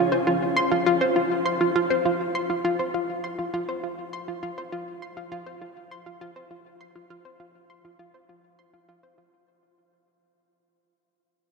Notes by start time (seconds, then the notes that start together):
0.12 C5
0.27 F4
0.57 C6
0.72 F4
0.86 F4
1.01 C5
1.16 F4
1.46 C6
1.61 F4
1.76 F4
1.90 C5
2.05 F4
2.35 C6
2.50 F4
2.65 F4
2.79 C5
2.94 F4
3.24 C6
3.39 F4
3.54 F4
3.69 C5
3.83 F4
4.13 C6
4.28 F4
4.43 F4
4.58 C5
4.72 F4
5.02 C6
5.17 F4
5.32 F4
5.47 C5
5.62 F4
5.91 C6
6.06 F4
6.21 F4
6.36 C5
6.51 F4
6.81 C6
6.95 F4
7.10 F4
7.25 C5
7.40 F4
7.70 C6
7.85 F4
7.99 F4
8.14 C5
8.29 F4
8.59 C6
8.73 F4
8.89 F4
9.03 C5
9.18 F4